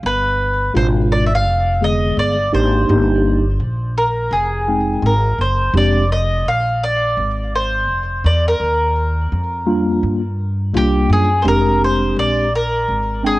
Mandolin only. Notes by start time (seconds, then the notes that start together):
0.06 B4
0.77 C5
1.12 D5
1.26 E5
1.35 F5
1.84 D#5
2.19 D5
2.54 C5
3.98 A#4
4.33 G#4
5.06 A#4
5.41 C5
5.77 D5
6.12 D#5
6.48 F5
6.83 D5
7.55 C5
8.26 D5
8.48 A#4
10.77 G4
11.13 G#4
11.42 C5
11.48 A#4
11.84 C5
12.19 D5
12.55 A#4
13.26 G#4